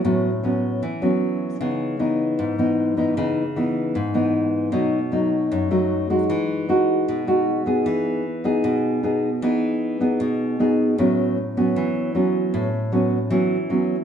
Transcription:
\new Staff \with { instrumentName = "Nylon-string guitar" } { \time 4/4 \key e \major \tempo 4 = 154 << { <fis b cis'>8 r8 <fis b cis'>4 r8 <fis b cis'>4. | <e b dis'>4 <e b dis'>4. <e b dis'>4 <e b dis'>8 | <e b dis'>8 r8 <e b dis'>4 r8 <e b dis'>4. | <fis a dis'>8 r8 <fis a dis'>4. <fis a dis'>4 <gis dis' fis'>8~ |
<gis dis' fis'>4 <gis dis' fis'>4. <gis dis' fis'>4 <b dis' gis'>8~ | <b dis' gis'>4 r8 <b dis' gis'>4. <b dis' gis'>8 r8 | <b dis' gis'>4. <b dis' gis'>4. <b dis' gis'>4 | <fis b cis'>4 r8 <fis b cis'>4. <fis b cis'>4~ |
<fis b cis'>8 r8 <fis b cis'>8 r8 <fis b cis'>8 r8 <fis b cis'>8 r8 | } \\ { a,2 e2 | cis2 gis,2 | cis2 gis,2 | b,2 fis,2 |
e2 b,2 | e2 b,2 | e2 b,2 | a,2 e2 |
a,2 e2 | } >> }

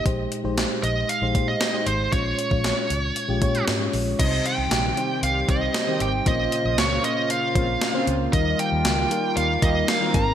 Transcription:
<<
  \new Staff \with { instrumentName = "Lead electric guitar" } { \time 4/4 \key c \phrygian \tempo 4 = 116 r4. ees''8 f''8. ees''8. c''8 | des''2. r4 | ees''8 g''4. f''8 ees''4 g''8 | ees''4 des''8 ees''8 f''4. r8 |
ees''8 g''4. f''8 ees''8 f''8 bes''8 | }
  \new Staff \with { instrumentName = "FM electric piano" } { \time 4/4 \key c \phrygian <aes ees' g' c''>8 r16 <aes ees' g' c''>4 r8 <aes ees' g' c''>16 <aes ees' g' c''>8 r16 <aes ees' g' c''>8 r16 | <aes des' f' des''>8 r16 <aes des' f' des''>4 r8 <aes des' f' g'>16 <aes des' f' des''>8 r16 <aes des' f' des''>8 r16 | <g c' ees' ces'' c''>4 r8 <g c' ees' c''>8. r16 <g c' ees' c''>8 r16 <g c' ees' c''>8 r16 | <bes des' f' c''>4 r8 <bes des' f' c''>8. r16 <bes des' f' c''>8 r16 <bes des' f' c''>8 r16 |
<g ees' f' bes'>4 r8 <g ees' f' bes'>8. r16 <g ees' f' bes'>8 r16 <g ees' f' bes'>16 <aes c' ees' bes'>8 | }
  \new Staff \with { instrumentName = "FM electric piano" } { \clef bass \time 4/4 \key c \phrygian bes,4. r2 r8 | bes,4. r2 r8 | c4. r2 r8 | bes,4. r2 r8 |
ees4. r2 aes,8 | }
  \new Staff \with { instrumentName = "Analog polysynth" } { \time 4/4 \key c \phrygian r1 | r1 | r2 r8 <ees c' g'>16 r8 <ees c' g'>8 r16 | r2 r8 <des c' f'>16 r8 <des c' f'>8 r16 |
r2 r8 <ees bes g'>16 r8 <ees c' bes'>8 r16 | }
  \new Staff \with { instrumentName = "Analog synth pad" } { \clef bass \time 4/4 \key c \phrygian << { r1 | r1 | c''1~ | c''1 |
r1 | } \\ { r1 | r1 | <ees g g'>1 | <des bes f'>1 |
<ees g f'>2.~ <ees g f'>8 <c aes ees'>8 | } >> }
  \new Staff \with { instrumentName = "Fingered electric bass" } { \clef bass \time 4/4 \key c \phrygian bes,,8 r16 bes,,8 r16 bes,,8 r16 bes,,16 bes,8 r8 aes,,8 | bes,,8 r16 bes,,8 r16 des,8 r16 bes,,16 bes,8 aes,8 bes,,8 | c,8 r16 c,16 bes,,8 r8 c,8 c,8 r8 aes,,8 | bes,,8 r16 bes,,16 des,8 r4 bes,,8 r8 des,8 |
ees,8 r16 ees,16 des,8 r8 ees,8 ees,8 r8 aes,,8 | }
  \new DrumStaff \with { instrumentName = "Drums" } \drummode { \time 4/4 <hh bd>8 hh8 <hh sn>8 hh8 hh8 <hh bd>8 <hh sn>8 hh8 | <hh bd>8 hh16 bd16 <hh sn>8 hh8 hh8 <hh bd>16 hh16 <hh sn>8 hho8 | <cymc hh bd>8 hh8 <hh sn>8 hh8 hh8 <hh bd>8 <hh sn>8 hh8 | <hh bd>8 hh8 <hh sn>8 hh8 hh8 <hh bd>8 <hh sn>8 hh8 |
<hh bd>8 hh8 <hh sn>8 hh8 hh8 <hh bd>8 <hh sn>8 <hh bd>8 | }
>>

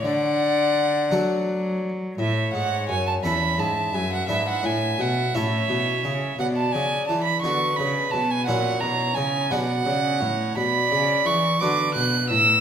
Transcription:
<<
  \new Staff \with { instrumentName = "Violin" } { \time 6/8 \key d \major \tempo 4. = 57 fis''2~ fis''16 r8. | \key a \major e''8 fis''8 gis''16 a''16 b''8 a''8 gis''16 fis''16 | e''16 fis''16 gis''8 fis''8 e''4. | fis''16 a''16 gis''8 a''16 b''16 cis'''8 b''8 a''16 gis''16 |
fis''8 ais''8 gis''8 fis''4. | \key b \minor b''4 cis'''8 d'''8 fis'''8 e'''8 | }
  \new Staff \with { instrumentName = "Violin" } { \time 6/8 \key d \major d''2~ d''8 r8 | \key a \major cis''4. e''4.~ | e''4. cis''4. | d''4. b'4. |
cis''4. d''8 d''8 cis''8 | \key b \minor d''4. b'4. | }
  \new Staff \with { instrumentName = "Harpsichord" } { \time 6/8 \key d \major r4. <a d' fis'>4. | \key a \major r4. <cis' e' a'>4. | <d' e' b'>4. <cis' e' a'>4. | r4. <b d' fis'>4. |
<cis' e' fis'>4. <b d' fis'>4. | \key b \minor r4. <b d' fis'>4. | }
  \new Staff \with { instrumentName = "Harpsichord" } { \clef bass \time 6/8 \key d \major d4. fis4. | \key a \major a,8 gis,8 fis,8 e,8 gis,8 fis,8 | gis,8 a,8 b,8 a,8 b,8 cis8 | b,8 cis8 e8 d8 cis8 b,8 |
ais,8 b,8 cis8 b,8 cis8 a,8 | \key b \minor b,8 cis8 e8 d8 b,8 a,8 | }
  \new Staff \with { instrumentName = "Cello" } { \clef bass \time 6/8 \key d \major d4. fis4. | \key a \major a,8 gis,8 fis,8 e,8 gis,8 fis,8 | gis,8 a,8 b,8 a,8 b,8 cis8 | b,8 cis8 e8 d8 cis8 b,8 |
ais,8 b,8 cis8 b,8 cis8 a,8 | \key b \minor b,8 cis8 e8 d8 b,8 a,8 | }
>>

